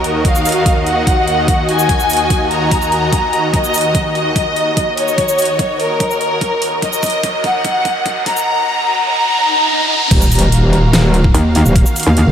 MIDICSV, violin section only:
0, 0, Header, 1, 2, 480
1, 0, Start_track
1, 0, Key_signature, -6, "minor"
1, 0, Tempo, 410959
1, 291, Time_signature, 4, 2, 24, 8
1, 14386, End_track
2, 0, Start_track
2, 0, Title_t, "Violin section"
2, 0, Program_c, 0, 48
2, 0, Note_on_c, 0, 70, 88
2, 197, Note_off_c, 0, 70, 0
2, 291, Note_on_c, 0, 77, 92
2, 917, Note_off_c, 0, 77, 0
2, 1010, Note_on_c, 0, 78, 89
2, 1876, Note_off_c, 0, 78, 0
2, 1971, Note_on_c, 0, 80, 98
2, 2837, Note_off_c, 0, 80, 0
2, 2931, Note_on_c, 0, 82, 89
2, 4037, Note_off_c, 0, 82, 0
2, 4130, Note_on_c, 0, 75, 95
2, 4756, Note_off_c, 0, 75, 0
2, 4849, Note_on_c, 0, 75, 91
2, 5716, Note_off_c, 0, 75, 0
2, 5811, Note_on_c, 0, 73, 97
2, 6677, Note_off_c, 0, 73, 0
2, 6771, Note_on_c, 0, 70, 94
2, 7877, Note_off_c, 0, 70, 0
2, 7971, Note_on_c, 0, 75, 97
2, 8597, Note_off_c, 0, 75, 0
2, 8690, Note_on_c, 0, 78, 96
2, 9556, Note_off_c, 0, 78, 0
2, 9651, Note_on_c, 0, 82, 97
2, 10517, Note_off_c, 0, 82, 0
2, 10610, Note_on_c, 0, 82, 102
2, 11716, Note_off_c, 0, 82, 0
2, 14386, End_track
0, 0, End_of_file